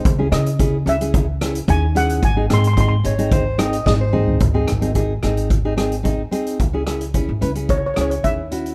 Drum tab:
HH |x-xxx-xxx-xxx-xx|x-xxx-xxx-xx----|x-xxx-xxx-xxx-xx|x-xxx-xxx-xxx-xx|
SD |--r-------r-----|--r-------r-o---|--r---r---r-----|--r-------r-----|
T2 |----------------|--------------o-|----------------|----------------|
FT |----------------|---------------o|----------------|----------------|
BD |o---o---o---o---|o---o---o---o---|o---o---o---o---|o---o---o---o---|